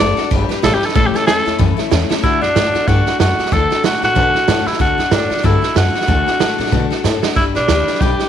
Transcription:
Already playing: D5
0.00 F#1 A3 D4 F#4 A4
0.17 D4 F#4 A4, muted upright bass stroke, snare
0.31 G1 G3 D4 G4 B4, kick, snare
0.49 D4 G4 B4, muted upright bass stroke, snare
0.62 G#1 G3 D4 G4 A4 B4, snare, hi-hat pedal
0.74 G4
0.81 D4 G4 B4, muted upright bass stroke, snare
0.86 A4, snare
0.95 A1 A2 E3 A3 C#4 E4 A4, kick, snare
1.07 G4
1.14 A3 C#4 E4 A4, muted upright bass stroke, snare
1.26 E2 A3 C#4 E4 A4, snare, hi-hat pedal
1.45 E2 A3 C#4 E4 A4, snare
1.58 F#2 A2 E3 A3 C#4 E4 A4, kick, snare
1.77 A3 C#4 E4 A4, muted upright bass stroke, snare
1.91 E2 A3 C#4 E4 A4, snare, hi-hat pedal
2.10 A3 C#4 E4 A4, muted upright bass stroke, snare
2.23 D2 D3 A3 D4 E4 F#4 A4, kick, snare
2.41 F#2 D4 F#4 A4, snare
2.55 A2 A3 D4 F#4 A4, snare, hi-hat pedal
2.74 D4 F#4 A4, muted upright bass stroke, snare
2.87 G2 D3 A3 D4 F#4 A4, kick, snare
3.06 D4 F#4 A4, muted upright bass stroke, snare
3.19 F#2 A3 D4 F#4 A4, snare, hi-hat pedal
3.38 D4 F#4 A4, muted upright bass stroke, snare
3.46 snare
3.52 D2 D3 A3 D4 F#4 A4, kick, snare
3.70 D4 F#4 A4, muted upright bass stroke, snare
3.83 A2 A3 D4 F#4 A4, snare, hi-hat pedal
4.02 A2 D4 F#4 A4, snare
4.15 B2 D3 A3 D4 F#4 A4, kick, snare
4.34 D4 F#4 A4, muted upright bass stroke, snare
4.48 A2 A3 D4 F#4 A4, snare, hi-hat pedal
4.66 D4 E4 F#4 A4, muted upright bass stroke, snare
4.73 snare
4.79 D2 D3 A3 D4 F#4 A4, kick, snare
4.98 F#2 D4 F#4 A4, snare
5.11 A2 A3 D4 F#4 A4, snare, hi-hat pedal
5.30 D4 F#4 A4, muted upright bass stroke, snare
5.37 snare
5.43 G2 D3 A3 D4 E4 F#4 A4, kick, snare
5.62 D4 F#4 A4, muted upright bass stroke, snare
5.75 F#2 A3 D4 F#4 A4, snare, hi-hat pedal
5.94 D4 F#4 A4, muted upright bass stroke, snare
6.01 snare
6.07 D2 D3 A3 D4 F#4 A4, kick, snare
6.26 D4 F#4 A4, muted upright bass stroke, snare
6.40 A2 A3 D4 F#4 A4, snare, hi-hat pedal
6.58 A2 D4 F#4 A4, snare
6.66 snare
6.72 B2 D3 A3 D4 F#4 A4, kick, snare
6.90 D4 F#4 A4, muted upright bass stroke, snare
7.04 A2 A3 D4 F#4 A4, snare, hi-hat pedal
7.22 D4 F#4 A4, muted upright bass stroke, snare
7.35 G1 G3 D4 E4 G4 B4, kick, snare
7.55 B1 D4 G4 B4, snare
7.68 D2 G3 D4 G4 B4, snare, hi-hat pedal
7.87 D4 G4 B4, muted upright bass stroke, snare
7.94 snare
8.01 B1 G3 D4 G4 B4, kick, snare
8.19 D4 G4 B4, muted upright bass stroke, snare

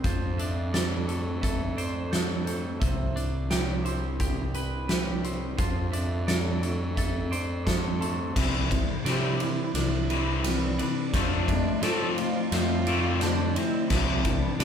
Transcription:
Already playing: C4
0.04 F2 F3 C4 D4 A4 C5, kick, closed hi-hat
0.38 D4 E5, closed hi-hat
0.73 A4 D5, snare, closed hi-hat
1.08 A3, closed hi-hat
1.42 A4 E5, kick, closed hi-hat
1.77 C5 D5, closed hi-hat
2.11 A4 C5, snare, closed hi-hat
2.45 A3 C5, closed hi-hat
2.79 C2 C3 D4 E4 E5, kick, closed hi-hat
3.16 D4, closed hi-hat
3.50 G4 D5, snare, closed hi-hat
3.85 C4 C5, closed hi-hat
4.20 G4, kick, closed hi-hat
4.54 B4, closed hi-hat
4.88 G4 B4, snare, closed hi-hat
5.24 C4, closed hi-hat
5.57 F2 F3 C4 D4 A4 C5, kick, closed hi-hat
5.92 D4 E5, closed hi-hat
6.27 A4 D5, snare, closed hi-hat
6.63 A3, closed hi-hat
6.96 A4 E5, kick, closed hi-hat
7.31 C5 D5, closed hi-hat
7.65 A4 C5, kick, snare, closed hi-hat
8.01 A3 C5, closed hi-hat
8.35 C2 C3 E3 G3 C4 E4 D5 E5 B5, kick, snare, crash
8.71 C3 E3, kick, ride
9.05 C3 E3 G3 D4 G4 D5, snare, ride
9.40 C3 E3 E4 C5, ride
9.74 C2 C3 E3 D4 E4, snare, ride
10.10 C3 E3 G3 B4, ride
10.44 C3 E3 G3 C4 B4, snare, ride
10.79 C3 E3 D4, ride
11.12 F2 F3 A3 C4 D4 C5 A5, kick, snare, ride
11.48 F3 A3 E5, kick, ride
11.82 F3 A3 C4 A4 D5, snare, ride
12.17 F3 A3 F4, ride
12.51 F2 F3 A3 C4 F4 E5, snare, ride
12.86 F3 A3 C4 D5, ride
13.21 D3 F3 A3 D4 C5, snare, ride
13.55 F3 A3 C4 E4 C5, ride
13.90 C2 C3 E3 G3 D4 E4 E5 B5, kick, snare, crash
14.25 C3 E3, kick, ride
14.60 C3 E3 G3 D4 D5, snare, ride

